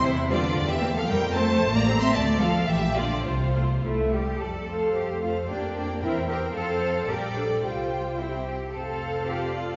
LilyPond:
<<
  \new Staff \with { instrumentName = "Violin section" } { \time 2/4 \key f \major \tempo 4 = 112 c''8 d''8. e''8 f''16 | g''8 a''8. bes''8 c'''16 | a''8 f''8 e''8 d''8 | c''4 r4 |
d''8 c''4. | bes'2 | c''4 d''4 | g''4. r8 |
r4 d''4 | }
  \new Staff \with { instrumentName = "Violin section" } { \time 2/4 \key f \major << { e'8 f'8. g'8 a'16 | bes'8 c''8. d''8 e''16 | d''8 a'8 g'8 f'8 | f'4 r4 |
r8 f''4 f''8 | g''8 g''8 g''8 g''8 | f''4 g''4 | g''4 g''8 r8 |
f''2 | } \\ { r2 | r2 | r2 | r2 |
r8 c''4 c''8 | d''8 d''8 c''8 c''8 | c''4 d''4 | c''4 c''8 r8 |
c''4 a'4 | } >> }
  \new Staff \with { instrumentName = "Cello section" } { \time 2/4 \key f \major c8 d8. e8 f16 | g8 a8. bes8 c'16 | a8 f8 e8 d8 | c4 e'8 g'8 |
a'4 g'8 f'8 | d'8 d'8 e'8 g'8 | a'4 g'8 d'8 | f'4 e'8 g'8 |
a'4 g'8 f'8 | }
  \new Staff \with { instrumentName = "Viola section" } { \time 2/4 \key f \major << { r8 c'8 r8 c'8 | r8 c'8 r8 c'8 | r8 f'8 r8 f'8 | r8 f'8 a8 g8 |
r8 a'4 a'8 | g'8 g'8 bes'8 bes'8 | a'4 bes'8 a'8 | g'4 g'8 r8 |
a'4 f'4 | } \\ { r8 g8 r8 bes8 | r8 a8 r8 a8 | r8 a8 r8 bes8 | r8 a8 r4 |
r8 a4 a8 | bes8 bes8 c'8 c'8 | c'4 g4 | g4 c'8 r8 |
c'2 | } >> }
  \new Staff \with { instrumentName = "Double bass section" } { \clef bass \time 2/4 \key f \major e,4 e,4 | f,4 a,,4 | d,4 bes,,4 | c,4 c,4 |
f,4 f,4 | f,4 e,4 | f,4 bes,,4 | c,4. r8 |
f,,2 | }
>>